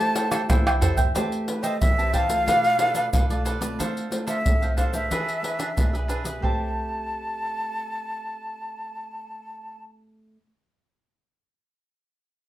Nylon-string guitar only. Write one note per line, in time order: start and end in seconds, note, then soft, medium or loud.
0.00 0.46 A3 medium
0.00 0.28 E4 medium
0.00 0.28 G4 medium
0.00 0.28 C5 medium
0.31 0.76 E4 medium
0.31 0.76 G4 medium
0.31 0.76 C5 medium
0.49 1.12 E3 medium
0.81 1.01 E4 medium
0.81 1.01 G4 medium
0.81 1.02 C5 medium
1.15 1.78 A3 medium
1.15 1.43 C4 medium
1.15 1.43 G4 medium
1.15 1.43 B4 medium
1.47 1.92 C4 medium
1.47 1.92 G4 medium
1.47 1.92 B4 medium
1.82 2.44 E3 medium
1.98 2.26 C4 medium
1.98 2.26 G4 medium
1.98 2.26 B4 medium
2.29 2.74 A3 soft
2.29 2.74 D4 medium
2.29 2.74 F4 medium
2.47 3.09 B2 medium
2.79 3.10 A3 soft
2.79 3.10 D4 medium
2.79 3.11 F4 medium
3.13 3.75 B2 medium
3.29 3.57 A3 medium
3.29 3.57 D4 soft
3.29 3.57 F4 medium
3.60 4.05 A3 medium
3.60 4.06 C4 medium
3.60 4.06 F4 medium
3.78 4.41 D3 medium
4.10 4.42 A3 medium
4.10 4.42 C4 medium
4.10 4.42 F4 medium
4.44 5.07 A2 medium
4.61 4.89 A3 medium
4.61 4.89 C4 medium
4.61 4.89 F4 medium
4.92 5.37 D4 medium
4.92 5.37 G#4 medium
4.92 5.38 B4 medium
5.10 5.73 E3 medium
5.42 5.74 D4 medium
5.42 5.74 G#4 medium
5.42 5.74 B4 medium
5.76 6.39 B2 medium
5.93 6.21 D4 medium
5.93 6.21 G#4 soft
5.93 6.21 B4 medium
6.24 6.41 C4 soft
6.24 6.43 G4 medium
6.24 6.70 B4 medium
6.40 10.37 A3 medium
6.40 10.39 C4 medium
6.44 10.41 G4 medium